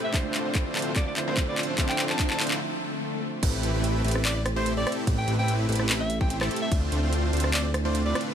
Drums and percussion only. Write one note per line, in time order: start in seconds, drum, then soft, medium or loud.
0.14 kick medium
0.14 clap medium
0.14 closed hi-hat medium
0.34 clap medium
0.34 closed hi-hat medium
0.55 kick loud
0.55 clap medium
0.55 closed hi-hat medium
0.75 clap medium
0.75 closed hi-hat medium
0.79 closed hi-hat medium
0.82 closed hi-hat medium
0.96 kick loud
0.96 clap medium
0.96 closed hi-hat medium
1.17 clap medium
1.17 closed hi-hat medium
1.37 kick loud
1.37 clap medium
1.37 closed hi-hat medium
1.58 clap medium
1.58 closed hi-hat soft
1.63 closed hi-hat medium
1.78 kick loud
1.78 clap loud
1.78 closed hi-hat medium
1.89 clap medium
1.99 clap medium
1.99 closed hi-hat medium
2.10 clap medium
2.19 kick loud
2.19 clap loud
2.19 closed hi-hat medium
2.30 clap medium
2.40 clap loud
2.40 closed hi-hat medium
2.44 closed hi-hat medium
2.47 clap medium
2.47 closed hi-hat medium
3.43 kick loud
3.43 closed hi-hat medium
3.43 crash loud
3.63 closed hi-hat medium
3.84 closed hi-hat medium
4.04 closed hi-hat medium
4.08 closed hi-hat medium
4.11 closed hi-hat medium
4.15 cross-stick medium
4.25 clap loud
4.25 closed hi-hat medium
4.25 crash soft
4.46 cross-stick medium
4.46 closed hi-hat medium
4.66 closed hi-hat medium
4.87 cross-stick medium
4.87 closed hi-hat medium
4.92 closed hi-hat medium
5.07 kick loud
5.07 closed hi-hat medium
5.07 crash soft
5.28 closed hi-hat medium
5.48 closed hi-hat medium
5.69 closed hi-hat medium
5.72 closed hi-hat medium
5.76 closed hi-hat medium
5.80 cross-stick medium
5.89 clap loud
5.89 closed hi-hat medium
5.89 crash soft
6.10 closed hi-hat medium
6.21 kick loud
6.30 closed hi-hat medium
6.41 cross-stick medium
6.41 clap soft
6.51 closed hi-hat soft
6.56 closed hi-hat medium
6.72 kick loud
6.72 closed hi-hat medium
6.72 crash soft
6.92 closed hi-hat medium
7.13 closed hi-hat medium
7.33 closed hi-hat medium
7.37 closed hi-hat medium
7.40 cross-stick medium
7.40 closed hi-hat medium
7.54 clap loud
7.54 closed hi-hat medium
7.54 crash soft
7.74 cross-stick medium
7.74 closed hi-hat medium
7.95 closed hi-hat medium
8.15 cross-stick medium
8.15 closed hi-hat soft
8.21 closed hi-hat medium